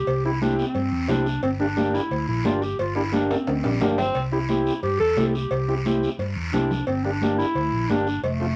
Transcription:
0.00 0.23 G4 loud
0.07 0.62 C2 medium
0.07 cowbell loud
0.07 high conga soft
0.07 long guiro medium
0.25 0.31 C4 medium
0.25 0.31 E4 medium
0.25 0.41 E4 medium
0.25 0.31 G4 medium
0.41 0.65 C4 medium
0.41 0.57 D4 medium
0.41 0.65 E4 medium
0.41 0.66 G4 medium
0.41 high conga medium
0.41 short guiro medium
0.58 1.06 C4 medium
0.58 short guiro medium
0.74 0.88 G2 medium
0.74 cowbell medium
0.74 high conga soft
0.74 long guiro medium
0.92 1.06 E2 medium
1.08 1.36 C2 loud
1.08 1.27 C4 medium
1.08 1.41 D4 loud
1.08 1.27 E4 medium
1.08 1.27 G4 medium
1.08 high conga medium
1.08 low conga medium
1.08 low timbale medium
1.08 short guiro medium
1.26 short guiro medium
1.42 1.97 G1 medium
1.42 1.51 C4 loud
1.42 cowbell loud
1.42 high conga soft
1.42 long guiro medium
1.59 1.66 A#3 medium
1.59 1.66 D4 medium
1.59 1.96 D4 medium
1.59 1.66 G4 medium
1.76 2.01 A#3 medium
1.76 2.01 D4 medium
1.76 2.01 G4 medium
1.76 high conga medium
1.76 short guiro medium
1.94 2.28 E4 medium
1.94 short guiro medium
2.11 2.25 D2 medium
2.11 cowbell medium
2.11 high conga soft
2.11 long guiro medium
2.28 2.42 A#1 medium
2.28 2.44 E4 medium
2.44 2.72 G1 medium
2.44 2.63 A#3 medium
2.44 2.63 D4 medium
2.44 2.64 F4 medium
2.44 2.63 G4 medium
2.44 high conga medium
2.44 low timbale medium
2.44 short guiro medium
2.62 2.79 G4 medium
2.62 short guiro medium
2.79 3.34 G1 medium
2.79 2.95 F4 medium
2.79 cowbell loud
2.79 high conga soft
2.79 long guiro medium
2.95 3.02 A#3 medium
2.95 3.02 D4 medium
2.95 3.12 E4 medium
2.95 3.02 G4 medium
3.12 3.37 A#3 medium
3.12 3.37 D4 medium
3.12 3.33 D4 medium
3.12 3.37 G4 medium
3.12 high conga medium
3.12 short guiro medium
3.31 3.82 C4 medium
3.31 high timbale loud
3.31 short guiro medium
3.47 3.61 D2 medium
3.47 cowbell medium
3.47 high conga soft
3.47 high timbale medium
3.47 long guiro medium
3.64 3.78 A#1 medium
3.64 3.82 G3 medium
3.64 high timbale medium
3.80 4.09 G1 medium
3.80 3.99 A#3 medium
3.80 3.97 A#3 loud
3.80 3.99 D4 medium
3.80 3.99 G4 medium
3.80 high conga medium
3.80 low conga medium
3.80 low timbale medium
3.80 short guiro medium
3.98 4.22 C4 loud
3.98 low conga medium
3.98 low timbale loud
3.98 short guiro medium
4.15 4.69 C2 medium
4.15 cowbell loud
4.15 high conga soft
4.15 long guiro medium
4.32 4.38 C4 medium
4.32 4.38 E4 medium
4.32 4.80 E4 medium
4.32 4.39 G4 medium
4.49 4.73 C4 medium
4.49 4.73 E4 medium
4.49 4.73 G4 medium
4.49 high conga medium
4.49 short guiro medium
4.67 short guiro medium
4.83 4.97 G2 loud
4.83 4.99 G4 loud
4.83 cowbell medium
4.83 high conga soft
4.83 long guiro medium
5.00 5.14 E2 medium
5.00 5.25 A4 loud
5.16 5.44 C2 loud
5.16 5.35 C4 medium
5.16 5.35 E4 medium
5.16 5.35 G4 medium
5.16 high conga medium
5.16 low timbale medium
5.16 short guiro medium
5.28 5.36 A4 medium
5.34 5.85 G4 medium
5.34 short guiro medium
5.50 6.05 C2 medium
5.50 cowbell loud
5.50 high conga soft
5.50 long guiro medium
5.68 5.74 C4 medium
5.68 5.74 E4 medium
5.68 5.75 G4 medium
5.85 6.09 C4 medium
5.85 6.10 E4 medium
5.85 6.10 G4 medium
5.85 high conga medium
5.85 short guiro medium
6.03 short guiro medium
6.19 6.33 G2 loud
6.19 cowbell medium
6.19 high conga soft
6.19 long guiro medium
6.36 6.50 E2 medium
6.53 6.80 C2 medium
6.53 6.71 C4 medium
6.53 6.85 D4 loud
6.53 6.71 E4 medium
6.53 6.72 G4 medium
6.53 high conga medium
6.53 low conga medium
6.53 short guiro medium
6.71 low conga medium
6.71 short guiro medium
6.87 7.42 G1 medium
6.87 7.05 C4 medium
6.87 cowbell loud
6.87 high conga soft
6.87 long guiro medium
7.04 7.11 A#3 medium
7.04 7.38 D4 loud
7.04 7.11 D4 medium
7.04 7.11 G4 medium
7.21 7.46 A#3 medium
7.21 7.46 D4 medium
7.21 7.46 G4 medium
7.21 high conga medium
7.21 short guiro medium
7.38 7.91 E4 loud
7.38 short guiro medium
7.55 7.69 D2 loud
7.55 cowbell medium
7.55 high conga soft
7.55 long guiro medium
7.72 7.86 A#1 medium
7.89 8.16 G1 medium
7.89 8.07 A#3 medium
7.89 8.23 D4 loud
7.89 8.07 D4 medium
7.89 8.08 G4 medium
7.89 high conga medium
7.89 short guiro medium
8.07 short guiro medium
8.23 8.56 F1 medium
8.23 8.56 A3 medium
8.23 cowbell loud
8.23 high conga soft
8.23 long guiro medium
8.40 8.46 A3 medium
8.40 8.46 C4 medium
8.40 8.47 F4 medium

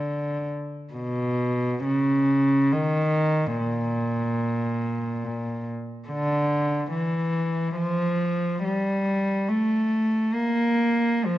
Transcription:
0.00 0.45 D3 soft
0.93 1.80 B2 soft
1.84 2.72 C#3 medium
2.73 3.59 D#3 medium
3.59 5.64 A#2 medium
6.08 6.87 D3 medium
6.91 7.77 E3 medium
7.76 8.63 F3 medium
8.64 9.48 G3 medium
9.48 10.35 A3 soft
10.34 11.26 A#3 medium
11.25 11.38 F3 soft

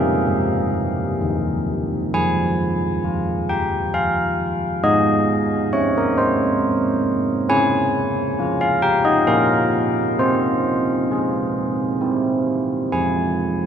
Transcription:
0.00 1.16 G#4 medium
0.00 1.15 F5 medium
0.27 1.01 G3 medium
1.21 1.95 D#3 medium
2.14 4.80 F3 medium
2.14 3.45 G#5 medium
3.04 4.84 F4 soft
3.49 3.92 G5 medium
3.94 4.80 F5 medium
4.84 7.46 G#3 medium
4.84 5.69 D#5 medium
5.72 7.49 C4 soft
5.72 5.95 C#5 medium
5.98 6.18 A#4 medium
6.18 7.02 C5 medium
7.49 8.38 C#4 medium
7.49 8.57 G#5 loud
8.39 9.25 C#4 soft
8.39 9.25 F4 medium
8.61 8.84 F5 medium
8.82 9.06 G5 loud
9.05 9.28 D#5 medium
9.27 10.17 A#3 medium
9.27 10.15 C#4 soft
9.27 10.15 F4 soft
9.27 10.15 F5 medium
10.19 11.98 C4 medium
10.19 11.98 C5 medium
11.11 11.98 F4 soft
11.11 11.99 G#4 soft
12.01 12.90 C4 medium
12.01 12.89 E4 soft
12.01 12.89 G4 soft
12.92 13.66 F3 medium
12.92 13.66 G#5 medium

